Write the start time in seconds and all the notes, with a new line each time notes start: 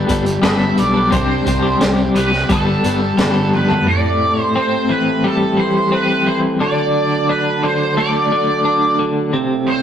Already playing: D5 G5 A5 B5
0.07 G1 G3 B3 D4 A4, kick, closed hi-hat
0.26 muted clean electric guitar stroke, closed hi-hat
0.42 G1 G3 B3 D4 A4 E5, snare, closed hi-hat
0.78 B1 D5, closed hi-hat
0.94 B3 D4 A4
1.11 C2 C3 G3 C4 D4 G4 C5 D5 D6, kick, closed hi-hat
1.45 C2 G3 C4 D4 G4, kick, closed hi-hat
1.62 C4 D4 G4
1.80 C2 C3 G3 C4 D4 G4, snare, closed hi-hat
2.14 C2 G3 C4 D4 G4 B4, closed hi-hat
2.32 muted clean electric guitar stroke, snare
2.49 G1 G3 B3 D4 A4 A5 B5, kick, closed hi-hat
2.66 B3 D4 A4
2.84 G1 G3 B3 D4 A4, closed hi-hat
3.01 muted clean electric guitar stroke
3.17 G1 G3 B3 D4 A4, snare, closed hi-hat
3.53 B4, high tom
3.68 B3 D4 A4, floor tom
3.87 A2 A3 C4 E4 G4 A4 D5
4.40 C5
4.55 C4 C5
4.89 E3 B4
5.24 G3 A4
5.57 E3 C5
5.92 C4 B4
6.27 E3 C5
6.60 D3 F#3 A3 D4 F#4 A4 D5
7.29 D4 B4
7.63 D3 C5
7.97 A3 D5
8.32 D3
8.65 D4
8.99 D3
9.33 C3 G3 C4 E4 G4
9.68 C5